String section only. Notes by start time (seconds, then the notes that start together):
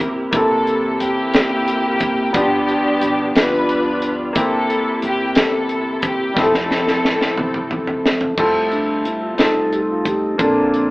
Already playing: E4 G4
0.34 E4 A4
1.01 A#3 E4 G4
2.37 B3 D4 G4
3.37 D4 F4 B4
4.39 E4 A4
5.06 G4
5.39 E4 A4
6.06 G4
6.38 C4 E4 A4